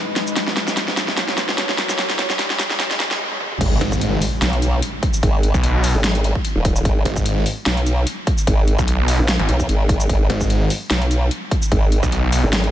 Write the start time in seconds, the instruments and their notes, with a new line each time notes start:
Already playing: ambient pad G#2 G#3 D#4 B4, riser
0.16 snare, closed hi-hat
0.27 shaker
0.36 ambient pad A#2 A#3 E4 C#5, snare, closed hi-hat
0.47 snare
0.57 snare, closed hi-hat
0.68 snare, shaker
0.77 snare, closed hi-hat
0.88 snare
0.97 snare, closed hi-hat, shaker
1.08 snare
1.17 snare, closed hi-hat
1.28 snare, closed hi-hat
1.38 snare, closed hi-hat, shaker
1.49 snare
1.58 snare, closed hi-hat
1.69 snare
1.78 snare, closed hi-hat
1.89 snare, shaker
1.98 ambient pad C#3 G#3, snare, closed hi-hat
2.10 snare, closed hi-hat
2.19 snare, closed hi-hat
2.30 snare, shaker
2.39 snare, closed hi-hat
2.50 snare
2.59 snare, closed hi-hat, shaker
2.70 snare
2.80 snare, closed hi-hat
2.91 snare, closed hi-hat
3.00 snare, closed hi-hat
3.11 snare
3.31 high tom
3.41 mid tom
3.52 mid tom
3.61 wobble bass G#1, kick, closed hi-hat, crash, impact
3.81 detuned saw bass G#1, closed hi-hat
3.92 kick, shaker
4.01 closed hi-hat
4.22 open hi-hat, shaker
4.42 wobble bass B1, snare, closed hi-hat
4.53 closed hi-hat
4.62 closed hi-hat, shaker
4.82 closed hi-hat
5.03 kick, closed hi-hat
5.14 shaker
5.23 wobble bass G#1, kick, closed hi-hat
5.43 closed hi-hat
5.54 detuned saw bass B1, kick, shaker
5.64 closed hi-hat
5.84 open hi-hat, shaker
5.95 wobble bass G#1
6.04 snare, closed hi-hat
6.15 closed hi-hat
6.24 closed hi-hat
6.35 kick
6.45 closed hi-hat
6.56 wobble bass D#1
6.65 kick, closed hi-hat
6.76 shaker
6.85 wobble bass G#1, kick, closed hi-hat
7.05 detuned saw bass G#1, closed hi-hat
7.16 kick, shaker
7.26 closed hi-hat
7.46 open hi-hat, shaker
7.66 wobble bass B1, snare, closed hi-hat
7.77 closed hi-hat
7.86 closed hi-hat, shaker
8.07 closed hi-hat
8.27 kick, closed hi-hat
8.38 shaker
8.47 wobble bass G#1, kick, closed hi-hat
8.68 closed hi-hat
8.79 detuned saw bass B1, kick, shaker
8.88 closed hi-hat
9.08 open hi-hat, shaker
9.19 wobble bass A#1
9.28 snare, closed hi-hat
9.39 detuned saw bass G#1, closed hi-hat
9.49 wobble bass B1, closed hi-hat
9.60 kick, shaker
9.69 wobble bass G#1, closed hi-hat
9.89 kick, closed hi-hat
10.00 shaker
10.09 wobble bass G#1, kick, closed hi-hat
10.30 detuned saw bass G#1, closed hi-hat
10.41 kick, shaker
10.50 closed hi-hat
10.70 open hi-hat, shaker
10.90 wobble bass B1, snare, closed hi-hat
11.02 closed hi-hat
11.11 closed hi-hat, shaker
11.31 closed hi-hat
11.51 kick, closed hi-hat
11.62 shaker
11.72 wobble bass G#1, kick, closed hi-hat
11.92 closed hi-hat
12.03 detuned saw bass B1, kick, shaker
12.12 closed hi-hat
12.33 open hi-hat, shaker
12.43 wobble bass G#1
12.53 snare, closed hi-hat
12.64 closed hi-hat